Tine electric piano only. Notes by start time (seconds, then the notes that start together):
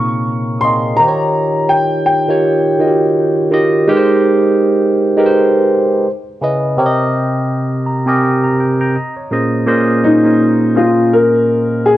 Already playing: A#2 C3 A#3 C4 D#4 G#4 A#4 C#5
0.62 A#2 A#3 C4 D#4 G#4 D#5
0.99 D#3 D#4 F4 G4 C5
1.08 C#5
2.28 D#3 D#4 F4 G4 C#5
2.79 D#3 D#4 F4 F#4 D#5
2.87 G4
3.51 D#3 D#4 F4 G4 D#5
3.88 G#3 D#4 G4 A#4 B4
3.97 C5
5.17 G#3 D#4 G4 A#4 B4
5.26 C5
6.41 C#3 C#4 E4 B4 D#5
6.77 C3 C4 G4 A#4 C#5
6.86 D#5
7.86 A#5
8.06 C3 C4 G4 A#4 D#5 G#5
8.23 D#5 G5
8.44 A#5
8.60 G5
8.81 G5 A#5
8.96 D#5
9.16 C#5
9.31 A#2 A#3 C#4 G#4 C5 D#5
9.66 A#2 A#3 C#4 G#4 C5 D#5
10.23 A#2 A#3 C#4 G#4 C5 D#5
10.75 A#2 A#3 C#4 G#4 C5 D#5